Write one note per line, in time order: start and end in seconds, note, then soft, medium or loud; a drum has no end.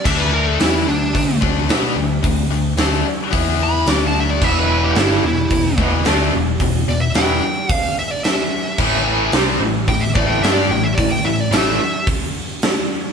0.05 0.56 D2 loud
0.05 0.59 D3 medium
0.05 0.59 A3 loud
0.05 0.59 D4 loud
0.05 0.19 E5 loud
0.05 kick loud
0.05 crash loud
0.17 0.31 B4 medium
0.33 0.47 A#4 medium
0.47 0.60 A4 medium
0.59 0.85 E2 medium
0.59 0.86 E3 medium
0.59 0.87 B3 medium
0.59 0.87 E4 medium
0.59 snare loud
0.59 open hi-hat medium
0.87 1.13 D2 medium
0.87 1.09 D3 medium
0.87 1.09 A3 medium
0.87 1.40 D4 loud
1.14 1.40 D2 medium
1.14 1.36 D3 medium
1.14 1.36 A3 medium
1.14 kick medium
1.14 open hi-hat medium
1.41 1.67 D2 medium
1.41 1.68 D3 medium
1.41 1.68 A3 medium
1.41 1.68 D4 loud
1.41 kick loud
1.69 1.95 B2 loud
1.69 1.96 B3 medium
1.69 1.96 F#4 medium
1.69 1.96 B4 loud
1.69 snare loud
1.69 open hi-hat medium
1.96 2.21 D2 medium
1.96 2.18 D3 medium
1.96 2.18 A3 medium
2.23 2.49 D2 medium
2.23 2.45 D3 medium
2.23 2.45 A3 medium
2.23 kick loud
2.23 open hi-hat medium
2.49 2.75 D2 medium
2.49 2.72 D3 medium
2.49 2.73 A3 medium
2.77 3.03 D2 medium
2.77 3.04 D3 medium
2.77 3.04 A3 medium
2.77 3.05 D4 medium
2.77 snare loud
2.77 open hi-hat medium
3.31 3.84 E2 loud
3.31 3.85 E3 loud
3.31 3.86 B3 medium
3.31 3.86 E4 medium
3.31 kick loud
3.31 open hi-hat medium
3.63 3.88 B5 loud
3.86 4.37 D2 loud
3.86 4.41 D3 medium
3.86 4.41 A3 loud
3.86 4.41 D4 medium
3.86 snare loud
3.86 open hi-hat medium
3.90 4.02 D6 medium
4.07 4.17 A5 medium
4.20 4.30 E5 medium
4.30 4.44 D5 medium
4.41 4.93 E1 loud
4.41 4.95 E2 medium
4.41 4.96 B2 loud
4.41 4.96 E3 loud
4.41 4.56 E5 medium
4.41 kick loud
4.41 crash medium
4.59 4.70 B4 medium
4.72 4.84 B4 medium
4.84 4.96 G4 medium
4.95 5.21 G1 medium
4.95 5.23 G2 medium
4.95 5.23 D3 medium
4.95 5.23 G3 medium
4.95 5.23 E4 medium
4.95 snare loud
4.95 open hi-hat medium
5.23 5.49 E1 medium
5.23 5.46 E2 medium
5.23 5.46 B2 medium
5.23 5.78 E4 medium
5.50 5.76 E1 medium
5.50 5.74 E2 medium
5.50 5.74 B2 medium
5.50 kick loud
5.50 open hi-hat medium
5.78 6.03 E1 medium
5.78 6.05 E2 loud
5.78 6.05 B2 medium
5.78 6.06 E3 loud
5.78 kick loud
6.05 6.31 D2 loud
6.05 6.32 D3 medium
6.05 6.33 A3 medium
6.05 6.33 D4 loud
6.05 snare loud
6.05 open hi-hat medium
6.32 6.58 E1 medium
6.32 6.55 E2 medium
6.32 6.55 B2 medium
6.60 6.86 E1 medium
6.60 6.83 E2 medium
6.60 6.83 B2 medium
6.60 kick medium
6.60 open hi-hat medium
6.88 7.13 E1 medium
6.88 7.10 E2 medium
6.88 7.10 B2 medium
6.88 7.01 D5 loud
7.01 7.15 E5 medium
7.14 7.40 E1 medium
7.14 7.42 E2 medium
7.14 7.42 B2 medium
7.14 7.42 E3 medium
7.14 7.73 G5 loud
7.14 snare loud
7.14 open hi-hat medium
7.69 7.95 F5 loud
7.69 kick loud
7.69 open hi-hat medium
7.99 8.11 E5 medium
8.11 8.24 D5 medium
8.24 8.77 E5 loud
8.24 snare loud
8.24 open hi-hat medium
8.78 9.30 A1 loud
8.78 9.33 A2 loud
8.78 9.33 E3 loud
8.78 9.34 A3 loud
8.78 kick loud
8.78 crash loud
9.32 9.58 C2 medium
9.32 9.60 C3 medium
9.32 9.61 G3 medium
9.32 9.61 C4 medium
9.32 snare loud
9.32 open hi-hat medium
9.59 9.85 A1 medium
9.59 9.83 A2 medium
9.59 9.83 E3 medium
9.88 10.14 A1 medium
9.88 10.10 A2 medium
9.88 10.10 E3 medium
9.88 10.02 G5 loud
9.88 kick loud
9.88 open hi-hat medium
10.01 10.14 E5 medium
10.15 10.40 A1 medium
10.15 10.42 A2 loud
10.15 10.42 E3 loud
10.15 10.43 A3 loud
10.15 10.29 D5 medium
10.15 kick loud
10.27 10.42 G5 medium
10.41 10.68 G2 loud
10.41 10.70 G3 medium
10.41 10.70 D4 loud
10.41 10.71 G4 medium
10.41 10.54 E5 medium
10.41 snare loud
10.41 open hi-hat medium
10.54 10.69 D5 loud
10.69 10.95 A1 medium
10.69 10.93 A2 medium
10.69 10.94 E3 medium
10.69 10.84 G5 medium
10.84 10.95 E5 loud
10.95 11.23 A1 medium
10.95 11.20 A2 medium
10.95 11.20 E3 medium
10.95 11.10 D5 medium
10.95 kick loud
10.95 open hi-hat medium
11.12 11.25 G5 medium
11.24 11.50 A1 medium
11.24 11.47 A2 medium
11.24 11.47 E3 medium
11.24 11.40 E5 loud
11.40 11.54 D5 medium
11.51 11.78 A1 medium
11.51 11.79 A2 medium
11.51 11.79 E3 medium
11.51 11.80 A3 loud
11.51 12.07 E5 medium
11.51 snare loud
11.51 open hi-hat medium
12.07 kick loud
12.07 open hi-hat medium
12.62 snare loud
12.62 open hi-hat medium